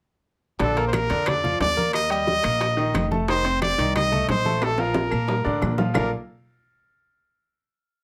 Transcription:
0.59 upright bass A#1, grand piano D3 D4 D5, trumpet A4, high bongo, high conga, high timbale
0.77 grand piano A#3 A#4 A#5, high conga, high timbale
0.88 trumpet C5
0.93 trumpet A#4, high bongo, high conga, high timbale, claves
1.10 upright bass F2, grand piano D3 D4 D5, high bongo, high timbale
1.26 trumpet D5, high bongo, high conga, low conga, high timbale, claves
1.43 grand piano F3 F4 F5, high bongo, high conga, low conga
1.60 upright bass D#2, grand piano D4 D5 D6, trumpet D5, high bongo, low bongo, high conga, high timbale, low timbale
1.76 grand piano A#3 A#4 A#5, high bongo, high conga
1.93 trumpet D#5, high bongo, high conga, high timbale, claves
2.10 grand piano G3 G4 G5, trumpet D#5, high conga, high timbale
2.27 high bongo, high conga
2.42 upright bass A#1, grand piano A#3 A#4 A#5, high bongo, high conga, high timbale, claves
2.61 high bongo, high conga, high timbale
2.77 grand piano D#3 D#4 D#5, high bongo, high conga
2.94 upright bass F1, high bongo, low bongo, high conga, high timbale, claves
3.11 grand piano A3 A4 A5, high bongo, high conga
3.28 grand piano D#3 D#4 D#5, trumpet C5, high bongo, high conga, high timbale
3.45 grand piano C4 C5 C6, high conga, high timbale
3.62 trumpet D5, high bongo, high conga, high timbale, claves
3.78 upright bass C2, grand piano D#3 D#4 D#5, high bongo, high timbale
3.96 trumpet D#5, high bongo, high conga, low conga, high timbale, claves
4.11 grand piano A3 A4 A5, high bongo, high conga, low conga
4.28 upright bass A#1, grand piano D#4 D#5 D#6, trumpet C5, high bongo, low bongo, high conga, high timbale, low timbale
4.45 grand piano A3 A4 A5, high bongo, high conga
4.62 trumpet A4, high bongo, high conga, high timbale, claves
4.78 grand piano F3 F4 F5, trumpet A#4, high conga, high timbale
4.94 high bongo, high conga, high timbale
5.10 upright bass A#2, grand piano A#3 A#4 A5, high bongo, high conga, claves
5.28 high bongo, high conga, low timbale
5.44 upright bass A2, grand piano D3 D4 D5, high bongo, high conga
5.62 upright bass A#2, high bongo, low bongo, high conga, claves
5.78 grand piano F3 F4 F5, high bongo, high conga, low timbale
5.94 upright bass A#1, grand piano A#3 F4 A4 A#4 D5 F5, trumpet A#4, low bongo, low conga, low timbale, claves

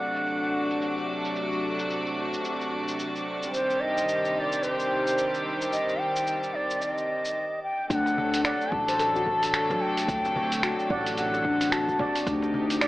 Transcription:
Already playing: string section C3 F#3 A3 D4 F#4, synth texture D4 D6, bansuri F#5
0.16 shaker
0.27 shaker
0.43 shaker
0.70 shaker
0.82 shaker
0.98 shaker
1.25 shaker
1.36 shaker
1.52 shaker
1.79 shaker
1.90 shaker
2.06 shaker
2.33 shaker
2.45 shaker
2.61 shaker
2.88 shaker
2.99 shaker
3.16 shaker
3.43 shaker
3.53 string section D#3 G3 C4 G4, bansuri C5, shaker
3.70 shaker
3.80 bansuri D#5
3.97 shaker
4.09 shaker
4.25 shaker
4.36 bansuri D#5
4.40 bansuri D5
4.52 shaker
4.63 bansuri C5, shaker
4.80 shaker
5.07 shaker
5.18 shaker
5.34 shaker
5.62 shaker
5.72 bansuri D#5, shaker
5.89 shaker
6.00 bansuri G5
6.16 shaker
6.27 shaker
6.43 shaker
6.55 bansuri D5
6.70 shaker
6.82 bansuri D#5, shaker
6.98 shaker
7.25 shaker
7.63 bansuri G5
7.90 upright bass D2, string section C3 F#3 A3 D4 A4, handpan D4, bansuri G5, kick, open hi-hat, shaker
7.95 bansuri F#5
8.06 cajon slap, shaker
8.18 cajon bass
8.34 open hi-hat, shaker
8.44 handpan D5, bansuri F#5, finger snap, open hi-hat, shaker
8.61 shaker
8.72 upright bass A1, bansuri A5, kick, cajon slap
8.88 handpan C5, open hi-hat, shaker
8.99 handpan A4, open hi-hat, shaker
9.16 handpan F#4, shaker
9.26 handpan A4, kick, cajon slap
9.43 open hi-hat, shaker
9.54 finger snap, open hi-hat, shaker
9.70 handpan F#3, cajon bass, cajon slap, shaker
9.81 bansuri G5
9.97 open hi-hat, shaker
10.08 upright bass D2, kick, open hi-hat, shaker
10.25 cajon slap, shaker
10.36 cajon bass
10.52 open hi-hat, shaker
10.63 handpan F#4, finger snap, open hi-hat, shaker
10.79 shaker
10.90 upright bass A1, handpan D5, bansuri F#5, kick, cajon slap
11.06 open hi-hat, shaker
11.17 bansuri F#5, open hi-hat, shaker
11.34 cajon slap, shaker
11.45 handpan D4, kick
11.61 cajon slap, open hi-hat, shaker
11.72 handpan F#4, bansuri A5, finger snap, open hi-hat, shaker
11.88 handpan F#4, kick, shaker
11.99 handpan D5, kick, cajon bass
12.16 open hi-hat, shaker
12.26 upright bass D2, handpan D4, string section D#4 G4, kick, open hi-hat, shaker
12.42 cajon slap, shaker
12.54 cajon bass
12.70 open hi-hat, shaker
12.81 handpan D5, finger snap, open hi-hat, shaker

